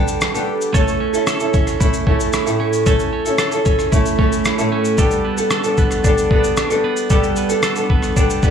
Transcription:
Already playing: G3 B3 D4 A4
0.08 shaker
0.21 cross-stick, shaker
0.34 G3 B3 D4 A4, shaker
0.61 shaker
0.74 A3 C#4 E4 A4, kick, shaker
0.88 shaker
1.00 C#4
1.13 C#4 E4 A4, shaker
1.27 A4, cross-stick, shaker
1.40 C#4 E4 A4, shaker
1.54 C#4, kick, shaker
1.67 cross-stick, shaker
1.80 A3 C#4 E4 A4, kick, shaker
1.94 shaker
2.06 A3 C#4 E4 A4, kick
2.20 shaker
2.33 E4, cross-stick, shaker
2.46 A2 A3 C#4 E4 A4, shaker
2.60 C#4
2.73 shaker
2.86 A3 C#4 E4 A4, kick, shaker
3.00 shaker
3.13 C#4
3.25 C#4 E4 A4, shaker
3.38 A4, cross-stick, shaker
3.52 C#4 E4 A4, shaker
3.65 C#4, kick, shaker
3.79 cross-stick, shaker
3.92 A3 C#4 E4 A4, kick, shaker
4.06 shaker
4.18 A3 C#4 E4 A4, kick
4.33 shaker
4.45 E4, cross-stick, shaker
4.58 A2 A3 C#4 E4 A4, shaker
4.72 C#4
4.85 shaker
4.98 G3 B3 D4 A4, kick, shaker
5.11 shaker
5.25 B3
5.38 B3 D4 A4, shaker
5.51 A4, cross-stick, shaker
5.64 B3 D4 A4, shaker
5.78 B3, kick, shaker
5.91 cross-stick, shaker
6.04 G3 B3 D4 A4, kick, shaker
6.18 shaker
6.30 G3 B3 D4 A4, kick
6.44 shaker
6.57 D4, cross-stick, shaker
6.70 G3 B3 D4 A4, shaker
6.84 B3
6.97 shaker
7.10 G3 B3 D4 A4, kick, shaker
7.23 shaker
7.36 B3, shaker
7.49 B3 D4 A4, shaker
7.63 A4, cross-stick, shaker
7.76 B3 D4 A4, shaker
7.90 B3, kick
8.02 cross-stick, shaker
8.16 G3 B3 D4 A4, kick, shaker
8.30 shaker
8.42 G3 B3 D4 A4, kick, shaker

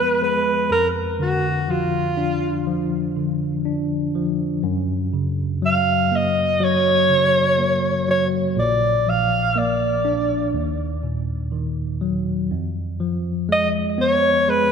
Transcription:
Already playing: F2 F3 G#3 B3 B4
0.22 G#3 B4
0.71 F2 A#4
1.19 D3 F#4
1.68 F3 F4
2.17 D4
2.67 F3
3.16 D3
3.65 D4
4.15 F3
4.63 F#2
5.13 C#3
5.62 F#3 F5
6.12 A#3 D#5
6.60 F#3 C#5
7.09 C#3
7.58 A#3
8.08 F#3 C#5
8.57 A#1 A#2 D5
9.07 F3 F5
9.56 A#3 D5
10.05 D4
10.54 D#2
11.03 A#2
11.52 D#3
12.01 F#3
12.51 F2
13.00 F3
13.49 G#3 D#5
13.98 B3 C#5
14.48 G#3 B4

